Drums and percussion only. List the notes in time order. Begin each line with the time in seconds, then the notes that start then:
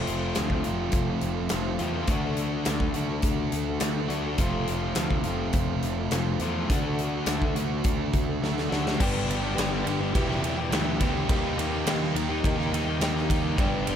0.07 closed hi-hat
0.35 snare, closed hi-hat
0.50 kick
0.64 closed hi-hat
0.92 kick, closed hi-hat
1.21 closed hi-hat
1.49 snare, closed hi-hat
1.79 closed hi-hat
2.07 kick, closed hi-hat
2.37 closed hi-hat
2.65 snare, closed hi-hat
2.80 kick
2.94 closed hi-hat
3.22 kick, closed hi-hat
3.52 closed hi-hat
3.80 snare, closed hi-hat
4.10 closed hi-hat
4.38 kick, closed hi-hat
4.67 closed hi-hat
4.95 snare, closed hi-hat
5.11 kick
5.24 closed hi-hat
5.53 kick, closed hi-hat
5.82 closed hi-hat
6.11 snare, closed hi-hat
6.39 closed hi-hat
6.70 kick, closed hi-hat
6.99 closed hi-hat
7.26 snare, closed hi-hat
7.42 kick
7.56 closed hi-hat
7.84 kick, closed hi-hat
8.13 kick, closed hi-hat
8.44 snare
8.58 snare
8.72 snare
8.87 snare
9.00 kick, crash
9.30 ride
9.58 snare, ride
9.87 ride
10.15 kick, ride
10.31 snare
10.44 ride
10.72 snare, ride
11.00 kick, ride
11.29 kick, ride
11.59 ride
11.87 snare, ride
12.04 snare
12.16 ride
12.44 kick, ride
12.60 snare
12.74 ride
13.01 snare, ride
13.18 snare
13.30 kick, ride
13.58 kick, ride
13.87 ride